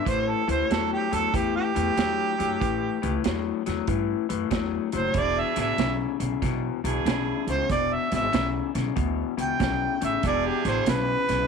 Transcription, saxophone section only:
5.15 D4 E4 G#4
6.84 D4 E4 G#4
10.24 D4 E4 G#4

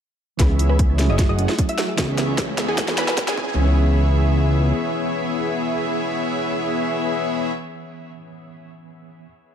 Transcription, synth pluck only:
0.40 B4 B5
0.69 B4 B5
1.10 D#5 D#6
1.29 D#5 D#6
1.69 E5 E6
2.68 G#4 G#5
2.98 B4 B5
3.28 G#4 G#5
3.38 G#5

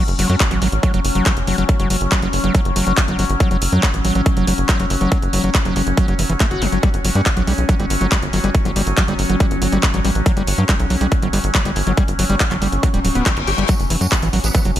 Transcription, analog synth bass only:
0.08 F#1
0.19 F#1
0.30 F#2
0.51 A1
0.62 A1
0.72 A1
0.94 F#1
1.05 F#1
1.15 F#1
1.37 F#1
1.47 F#1
1.58 F#1
1.80 F#1
1.90 F#1
2.01 F#1
2.22 F#1
2.33 F#1
2.44 F#1
2.65 F#1
2.76 F#1
2.87 F#1
3.08 G1
3.19 G1
3.30 G1
3.51 F#1
3.62 F#1
3.72 F#2
3.94 A1
4.05 A1
4.15 A1
4.37 F#1
4.47 F#1
4.58 F#1
4.80 F#1
4.90 F#1
5.01 F#1
5.22 F#1
5.33 F#1
5.44 F#1
5.65 F#1
5.76 F#1
5.87 F#1
6.08 F#1
6.19 F#1
6.30 F#1
6.51 G1
6.62 G1
6.72 G1
6.94 G1
7.05 G1
7.15 G2
7.37 B1
7.47 B1
7.58 B1
7.80 G1
7.90 G1
8.01 G1
8.22 G1
8.33 G1
8.44 G1
8.65 G1
8.76 G1
8.87 G1
9.08 G1
9.19 G1
9.30 G1
9.51 G1
9.62 G1
9.72 G1
9.94 A1
10.05 A1
10.15 A1
10.37 G1
10.47 G1
10.58 G2
10.80 B1
10.90 B1
11.01 B1
11.22 G1
11.33 G1
11.44 G1
11.65 G1
11.76 G1
11.87 G1
12.08 G1
12.19 G1
12.30 G1
12.51 G1
12.62 G1
12.72 G1
12.94 D1
13.05 D1
13.15 D1
13.37 G1
13.47 G1
13.58 G1
13.80 F#1
13.90 F#1
14.01 F#2
14.22 A1
14.33 A1
14.44 A1
14.65 F#1
14.76 F#1

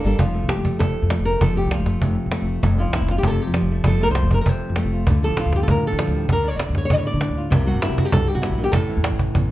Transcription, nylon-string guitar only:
0.04 G3 A#3 D4 A4
0.18 F3 F4
0.34 A3
0.48 G4
0.65 A3
0.79 C3 A4
1.10 A3
1.25 A#4
1.41 F3 A4
1.55 A3 G4
1.73 F4
1.87 A3
2.01 C3
2.32 A3
2.63 F2
2.78 F3 F4
2.95 E4
3.11 F4
3.18 G4
3.25 C3 A4
3.42 G4
3.55 F3
3.71 A3
3.85 F3 A4
4.01 A3 A#4
4.11 C5
4.17 F4
4.34 A#4
4.41 A#4
4.47 C3 C5
4.77 A3
4.93 F4
5.07 D3
5.23 F3 A4
5.39 F4
5.56 G4
5.63 A4
5.68 A2 A#4
5.87 A4
5.98 F3
6.14 G3
6.29 D3 A#4
6.44 D4 C#5
6.56 D5
6.78 C#5
6.85 C#5
6.91 A2 D5
6.98 C#5
7.07 D5
7.21 D4
7.37 F4
7.50 C3 G3 A#3 E4
7.66 G3 F#4
7.83 E4
7.98 F#4
8.05 G4
8.13 G2 A4
8.28 G4
8.35 F#4
8.42 C3 E4
8.58 A#2
8.64 G4
8.72 A2 A4
8.89 E3
9.34 E2

